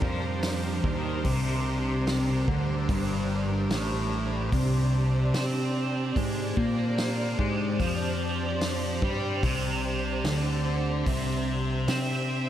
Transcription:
Already playing: G3 D4 G4 A#4 C5
0.02 F2 F3, kick
0.43 snare, open hi-hat
0.84 D#2 D#3, kick
1.25 C2 C3, kick, open hi-hat
2.07 snare, open hi-hat
2.48 D2 D3, kick
2.89 G1 G2, kick, open hi-hat
3.69 A1 A2, snare, open hi-hat
4.52 C2 C3 C4 C5 D5, kick, open hi-hat
5.33 C3 C4, snare, open hi-hat
6.16 G#2 G#3, kick, open hi-hat
6.57 A#2 A#3, kick
6.98 snare, open hi-hat
7.39 G#2 G#3, kick
7.80 F2 F3, kick, open hi-hat
8.61 snare, open hi-hat
9.02 G2 G3, kick
9.43 C2 C3, kick, open hi-hat
10.24 D2 D3, snare, open hi-hat
11.06 C2 C3 E5, kick, open hi-hat
11.88 C3 C4, snare, open hi-hat

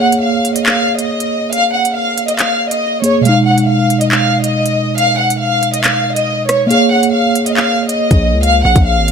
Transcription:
Already playing: A#3 G#4 C#5
0.02 F#5
0.12 closed hi-hat
0.23 F5
0.45 closed hi-hat
0.56 D#5, closed hi-hat
0.66 F5, clap
0.99 D#5, closed hi-hat
1.20 closed hi-hat
1.53 F5, closed hi-hat
1.74 F#5
1.85 closed hi-hat
1.96 F5
2.18 closed hi-hat
2.28 D#5, closed hi-hat
2.39 F5, clap, closed hi-hat
2.71 D#5, closed hi-hat
3.02 A#3 G#4 C#5, closed hi-hat
3.21 B2 G#3, closed hi-hat
3.25 D#4 F5
3.47 F#5
3.58 closed hi-hat
3.68 F5
3.90 closed hi-hat
4.01 D#5, closed hi-hat
4.12 F5, clap
4.44 D#5, closed hi-hat
4.66 closed hi-hat
4.98 F5, closed hi-hat
5.19 F#5
5.30 closed hi-hat
5.41 F5
5.63 closed hi-hat
5.73 D#5, closed hi-hat
5.84 F5, clap, closed hi-hat
6.16 D#5, closed hi-hat
6.49 C#5, cross-stick, closed hi-hat
6.67 A#3 G#4 F5, closed hi-hat
6.74 C#5
6.92 F#5
7.03 closed hi-hat
7.13 F5
7.35 closed hi-hat
7.46 D#5, closed hi-hat
7.57 F5, clap
7.89 D#5, closed hi-hat
8.11 A#1, kick, closed hi-hat
8.32 C#2
8.43 F5, closed hi-hat
8.64 A#1 F#5
8.76 A#1, kick, closed hi-hat
8.86 F5
8.97 G#1
9.08 closed hi-hat

